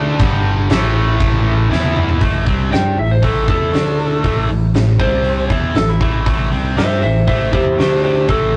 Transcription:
Already playing: picked electric bass D2, distorted electric guitar D3 A3 D4
0.19 picked electric bass G1, distorted electric guitar G2 D3 G3, kick, crash
0.70 picked electric bass A1, distorted electric guitar A2 E3 A3, snare, crash
1.20 kick, crash
1.70 picked electric bass E2, distorted electric guitar E3 B3 E4, snare
1.84 high tom
1.97 mid tom
2.09 floor tom
2.20 picked electric bass A1, distorted electric guitar A2 E3 A3, kick, open hi-hat
2.46 picked electric bass C2, distorted electric guitar C3 G3 C4, kick, open hi-hat
2.71 picked electric bass G2, distorted electric guitar G3 D4 G4, lead electric guitar G5, snare, open hi-hat
2.97 picked electric bass A1, distorted electric guitar A2 E3, lead electric guitar E5, open hi-hat
3.11 lead electric guitar C5
3.22 picked electric bass A1, distorted electric guitar A2 E3 A3, lead electric guitar A4, kick, open hi-hat
3.47 picked electric bass E2, distorted electric guitar E3 B3 E4, lead electric guitar A4, kick, open hi-hat
3.72 picked electric bass D2, distorted electric guitar D3 A3 D4, snare, open hi-hat
3.99 open hi-hat
4.24 picked electric bass A1, distorted electric guitar A2 E3 A3, kick, open hi-hat
4.49 picked electric bass A1, distorted electric guitar A2 E3, open hi-hat
4.74 picked electric bass A1, distorted electric guitar A2 E3, snare, open hi-hat
4.99 picked electric bass C2, distorted electric guitar C3 G3 C4, lead electric guitar C5, kick, open hi-hat
5.24 open hi-hat
5.50 picked electric bass E2, distorted electric guitar E3 B3 E4, kick, open hi-hat
5.75 picked electric bass A1, distorted electric guitar A2 E3, lead electric guitar A4, snare, open hi-hat
5.90 lead electric guitar E4
6.00 picked electric bass A1, distorted electric guitar A2 E3 A3, lead electric guitar E4, kick, open hi-hat
6.26 picked electric bass A1, distorted electric guitar A2 E3 A3, kick, open hi-hat
6.51 picked electric bass C2, distorted electric guitar C3 G3 C4, open hi-hat
6.77 picked electric bass G2, distorted electric guitar G3 D4 G4, lead electric guitar C5 E5, snare, open hi-hat
7.02 picked electric bass A1, distorted electric guitar A2 E3, lead electric guitar C5 E5, open hi-hat
7.27 picked electric bass A1, distorted electric guitar A2 E3 A3, lead electric guitar C5 E5, kick, open hi-hat
7.52 picked electric bass E2, distorted electric guitar E3 B3 E4, lead electric guitar G4 C5, kick, open hi-hat
7.78 picked electric bass D2, distorted electric guitar D3 A3 D4, lead electric guitar G4 C5, snare, open hi-hat
8.04 lead electric guitar G4 C5, open hi-hat
8.28 picked electric bass A1, distorted electric guitar A2 E3 A3, lead electric guitar A4, kick, open hi-hat
8.54 distorted electric guitar A2

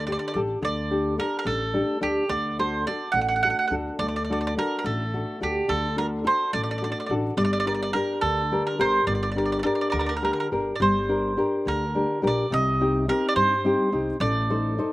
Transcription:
Already playing: upright bass D2, nylon-string guitar D3
0.07 nylon-string guitar D4 G4 A4, mandolin D5
0.12 mandolin D5
0.19 mandolin D5
0.28 mandolin D5
0.34 upright bass A1, nylon-string guitar D4 G4 A4, mandolin D5
0.62 upright bass D2, nylon-string guitar D3, mandolin D5
0.91 nylon-string guitar D4 G4 A4
1.18 nylon-string guitar D4 G4 A4, mandolin A#4
1.39 mandolin A#4
1.45 upright bass A1, nylon-string guitar A3, mandolin A4
1.74 nylon-string guitar D4 G4 A4
2.01 upright bass D2, nylon-string guitar D4 G4 A4, mandolin G4
2.29 upright bass D2, nylon-string guitar D3, mandolin D5
2.58 nylon-string guitar D4 F#4 A4, mandolin C5
2.87 nylon-string guitar D4 F#4 A4, mandolin D5
3.12 upright bass A1, nylon-string guitar A3, mandolin F#5
3.21 mandolin F#5
3.29 mandolin F#5
3.36 mandolin F#5
3.43 nylon-string guitar D4 F#4 A4, mandolin F#5
3.59 mandolin F#5
3.68 upright bass D2, nylon-string guitar D4, mandolin F#5
3.72 nylon-string guitar F#4 A4
3.99 upright bass D2, nylon-string guitar A3, mandolin D5
4.08 mandolin D5
4.16 mandolin D5
4.25 mandolin D5
4.30 nylon-string guitar D4 F#4 A4, mandolin D5
4.41 mandolin D5
4.47 mandolin D5
4.57 nylon-string guitar D4 F#4 A4, mandolin A#4
4.79 mandolin A#4
4.84 upright bass A1, nylon-string guitar A3, mandolin A4
5.14 nylon-string guitar D4 F#4 A4
5.41 upright bass D2, nylon-string guitar D4 F#4 A4, mandolin G4
5.68 upright bass D2, nylon-string guitar D3, mandolin A4
5.97 nylon-string guitar D4 F#4 A4, mandolin A#4
6.24 nylon-string guitar D4 F#4 A4, mandolin C5
6.53 upright bass A1, nylon-string guitar A3, mandolin D5
6.63 mandolin D5
6.71 mandolin D5
6.78 nylon-string guitar D4 F#4, mandolin D5
6.82 nylon-string guitar A4, mandolin D5
6.92 mandolin D5
7.00 mandolin D5
7.06 upright bass A1, nylon-string guitar D4, mandolin D5
7.10 nylon-string guitar F#4 A4
7.37 upright bass G1, nylon-string guitar G3, mandolin D5
7.45 mandolin D5
7.53 mandolin D5
7.60 mandolin D5
7.66 nylon-string guitar D4 G4 A#4, mandolin D5
7.74 mandolin D5
7.83 mandolin D5
7.93 nylon-string guitar D4 G4 A#4, mandolin A#4
8.21 upright bass D2, nylon-string guitar D3, mandolin A4
8.52 nylon-string guitar D4 G4 A#4
8.67 mandolin A#4
8.79 upright bass G1, nylon-string guitar D4 G4 A#4, mandolin C5
9.07 upright bass G1, nylon-string guitar D3, mandolin D5
9.15 mandolin D5
9.23 mandolin D5
9.32 mandolin D5
9.36 nylon-string guitar D4 G4 A#4, mandolin D5
9.46 mandolin D5
9.52 mandolin D5
9.59 mandolin A4 D5
9.64 nylon-string guitar D4 G4 A#4, mandolin D5
9.75 mandolin D5
9.81 mandolin D5
9.90 upright bass D2, nylon-string guitar D3, mandolin A#4 D5
9.99 mandolin A#4 D5
10.06 mandolin A#4 D5
10.17 mandolin A#4
10.22 nylon-string guitar D4 G4 A#4, mandolin A#4
10.33 mandolin A#4
10.40 mandolin A#4
10.52 upright bass G1, nylon-string guitar D4 G4 A#4
10.76 mandolin D5
10.80 upright bass G1, nylon-string guitar G3, mandolin C5
11.09 nylon-string guitar D4 G4 A#4
11.37 nylon-string guitar D4 G4 A#4
11.65 upright bass D2, nylon-string guitar D3, mandolin A#4
11.95 nylon-string guitar D4 G4 A#4
12.22 upright bass A#1, nylon-string guitar D4 G4 A#4
12.27 mandolin D5
12.50 upright bass C2, nylon-string guitar C3, mandolin D#5
12.81 nylon-string guitar C4 D#4 G4
13.08 nylon-string guitar C4 D#4 G4, mandolin A#4
13.29 mandolin D5
13.36 upright bass G2, nylon-string guitar G3, mandolin C5
13.64 nylon-string guitar C4 D#4 G4
13.92 upright bass C2, nylon-string guitar C4 D#4 G4
14.20 upright bass A1, nylon-string guitar A3, mandolin D5
14.50 nylon-string guitar D#4 A4 C5
14.78 nylon-string guitar D#4 A4 C5

